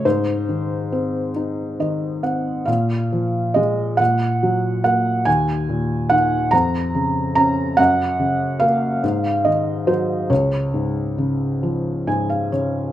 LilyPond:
<<
  \new Staff \with { instrumentName = "Felt piano" } { \time 6/8 \key des \major \tempo 4. = 46 << { c''4. r4. | f''4 ees''8 ges''4 ges''8 | aes''4 ges''8 bes''4 bes''8 | ges''4 f''4 ees''8 c''8 |
des''2~ des''8 r8 | } \\ { r2 ees''8 ges''8 | r2. | r2. | r2. |
r2 aes''16 f''16 des''8 | } >> }
  \new Staff \with { instrumentName = "Felt piano" } { \clef bass \time 6/8 \key des \major aes,8 ees8 c'8 ees'8 ees8 c'8 | bes,8 f8 aes8 bes,8 ges8 bes8 | ees,8 bes,8 ees8 f,8 des8 des'8 | ges,8 des8 bes8 aes,8 ees8 ges8 |
des,8 aes,8 des8 f8 aes,8 des8 | }
>>